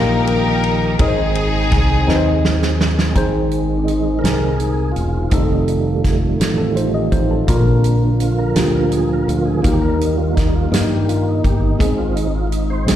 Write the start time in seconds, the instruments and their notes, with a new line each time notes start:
Already playing: fingered electric bass A#1, tine electric piano D#3 A#3 D#4 G4 A#4 D#5 F5, tonewheel organ D#3 G3 A#3 G4, string section D#4 G4 A#4
0.27 ride bell
0.64 ride bell
0.99 fingered electric bass G#1, tine electric piano G#2 C4 D#4 G#4 A#4 D#5, tonewheel organ G#3 C4 G#4, string section C4 D#4 G#4, kick, ride bell
1.08 tine electric piano C5
1.35 ride bell
1.72 fingered electric bass C2, kick, snare, ride bell
2.07 fingered electric bass D#2, tine electric piano C4 D#4 G#4 B4 D#5, snare
2.15 tine electric piano C5
2.45 snare
2.63 snare
2.81 snare
2.99 snare
3.14 fingered electric bass G#1, tine electric piano G#2 C4 D#4 G#4 C5, tonewheel organ D#3 G#3 C4, french horn section G#3 C4 D#4 G#4, kick, closed hi-hat
3.49 tonewheel organ C4, closed hi-hat
3.78 tonewheel organ D4
3.85 tonewheel organ D#4, closed hi-hat
4.19 tonewheel organ D#3 G#3 C4 A#4
4.23 fingered electric bass C2, tine electric piano C4 D#4 G#4 A#4, snare, closed hi-hat
4.57 tonewheel organ G#4, closed hi-hat
4.92 tonewheel organ F4
4.96 fingered electric bass E1, closed hi-hat
5.23 tonewheel organ F4
5.30 fingered electric bass F1, tonewheel organ D#3 G3 A3 D#4, french horn section A3 F4, tine electric piano C4 D#4 F4 A4, kick, closed hi-hat
5.68 closed hi-hat
6.04 kick, snare, closed hi-hat
6.40 fingered electric bass A1, snare, closed hi-hat
6.58 tine electric piano C4 A4
6.76 tine electric piano D#4 C5, closed hi-hat
6.94 tine electric piano G4 D#5
7.12 fingered electric bass A1, tine electric piano D#4 C5, kick, closed hi-hat
7.31 tine electric piano C4 A4
7.47 fingered electric bass A#1, tine electric piano A#2 A#3 D4 F4 A#4, tonewheel organ D3 F3 A#3, french horn section F3 A#3 D4, kick, closed hi-hat
7.84 closed hi-hat
8.20 tonewheel organ F4, closed hi-hat
8.39 tonewheel organ A#4
8.55 fingered electric bass D2, tine electric piano A#3 D4 F4 G4, tonewheel organ G#4, snare, closed hi-hat
8.75 tonewheel organ A#4
8.92 tonewheel organ G#4, closed hi-hat
9.13 tonewheel organ A#4
9.28 fingered electric bass D2, tonewheel organ D3 F3 A#3 F4, closed hi-hat
9.46 tonewheel organ G#4
9.62 fingered electric bass D#2, tonewheel organ D#3 G3 A#3 G4, french horn section D#3 G3 A#3 D#4, tine electric piano D#3 A#3 D#4 F#4 A#4, kick, closed hi-hat
9.71 tine electric piano G4
9.81 tonewheel organ A#4
9.99 tonewheel organ D#4, closed hi-hat
10.18 tonewheel organ F4
10.36 tonewheel organ D#4, kick, snare, closed hi-hat
10.55 tonewheel organ F4
10.71 fingered electric bass G2, tine electric piano A#3 D#4 G4 A#4, tonewheel organ D#4, snare, closed hi-hat
10.90 tonewheel organ G4
11.08 tonewheel organ F4, closed hi-hat
11.28 tonewheel organ D#4
11.44 fingered electric bass G1, tonewheel organ G4, kick, closed hi-hat
11.63 tonewheel organ D#4
11.79 fingered electric bass G#1, tine electric piano G#2 G#3 B3 D#4 G#4, tonewheel organ D#3 G#3 C4, french horn section G#3 C4, kick, closed hi-hat
11.86 tine electric piano C4
11.98 tonewheel organ F4
12.16 tonewheel organ D#4, closed hi-hat
12.35 tonewheel organ F4
12.47 tonewheel organ F4
12.52 tonewheel organ D#4, closed hi-hat
12.70 tonewheel organ C5
12.86 fingered electric bass C2, tonewheel organ D#3 G#3 C4 G#4, tine electric piano G#3 C4 D#4 E4, snare, closed hi-hat